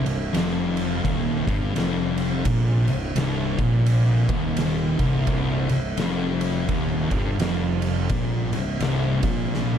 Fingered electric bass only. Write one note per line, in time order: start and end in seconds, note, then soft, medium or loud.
0.06 0.32 C1 medium
0.34 1.01 F1 loud
1.05 1.44 D#1 medium
1.47 1.74 G1 medium
1.76 2.42 F1 medium
2.45 2.85 A#1 medium
2.87 3.14 C1 medium
3.15 3.56 C1 medium
3.59 4.26 A#1 medium
4.29 4.96 D#1 medium
4.99 5.26 C1 medium
5.27 5.68 C1 medium
5.71 5.97 C1 medium
5.98 6.65 F1 medium
6.69 7.09 D#1 medium
7.12 7.38 G1 medium
7.40 8.07 F1 loud
8.10 8.50 A#1 medium
8.53 8.80 C1 medium
8.82 9.21 C1 medium
9.23 9.78 A#1 medium